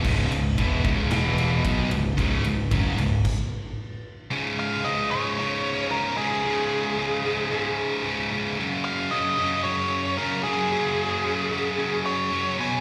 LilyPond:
<<
  \new Staff \with { instrumentName = "Lead electric guitar" } { \time 4/4 \key ges \major \tempo 4 = 112 r1 | r1 | r8 f''8 ees''8 des''4. bes'8 aes'8~ | aes'2~ aes'8 r4. |
r8 f''8 ees''4 des''4 bes'8 aes'8~ | aes'2~ aes'8 des''4 aes''8 | }
  \new Staff \with { instrumentName = "Distorted electric guitar" } { \clef bass \time 4/4 \key ges \major <des, aes, des>8 <des, aes,>8 <fes, ces fes>8 <des, aes, des>8 <e, b, e>4 <ces ges ces'>8 <des, aes,>8 | <des, aes, des>8 <des, aes,>8 <ges, des ges>8 <des, aes,>8 r2 | <des, aes, des>4 <des, aes, des>8 <des, aes, des>8 <des, aes, des>4 <des, aes, des>8 <des, aes, des>8 | <des, aes, des>4 <des, aes, des>8 <des, aes, des>8 <des, aes, des>4 <des, aes, des>8 <des, aes, des>8 |
<ges, des ges>4 <ges, des ges>8 <ges, des ges>8 <ges, des ges>4 <ges, des ges>8 <ges, des ges>8 | <ges, des ges>4 <ges, des ges>8 <ges, des ges>8 <ges, des ges>4 <ges, des ges>8 <ces ges ces'>8 | }
  \new Staff \with { instrumentName = "Distorted electric guitar" } { \clef bass \time 4/4 \key ges \major <des, aes, des>8 <des, aes,>8 <fes, ces fes>8 <des, aes, des>8 <e, b, e>4 <ces ges ces'>8 <des, aes,>8 | <des, aes, des>8 <des, aes,>8 <ges, des ges>8 <des, aes,>8 r2 | r1 | r1 |
r1 | r1 | }
  \new Staff \with { instrumentName = "Distorted electric guitar" } { \clef bass \time 4/4 \key ges \major <des, aes, des>8 <des, aes,>8 <fes, ces fes>8 <des, aes, des>8 <e, b, e>4 <ces ges ces'>8 <des, aes,>8 | <des, aes, des>8 <des, aes,>8 <ges, des ges>8 <des, aes,>8 r2 | r1 | r1 |
r1 | r1 | }
  \new Staff \with { instrumentName = "Fingered electric bass" } { \clef bass \time 4/4 \key ges \major des,,8 des,,8 fes,,8 des,,8 e,,4 ces,8 des,,8 | des,,8 des,,8 ges,,8 des,,8 r2 | r1 | r1 |
r1 | r1 | }
  \new DrumStaff \with { instrumentName = "Drums" } \drummode { \time 4/4 <cymc bd>8 cymr8 <bd cymr>8 <bd cymr>8 <cymr sn>8 cymr8 <bd cymr>8 cymr8 | <bd cymr>8 cymr8 <bd cymr>8 cymr8 <cymc bd>4 r4 | r4 r4 r4 r4 | r4 r4 r4 r4 |
r4 r4 r4 r4 | r4 r4 r4 r4 | }
>>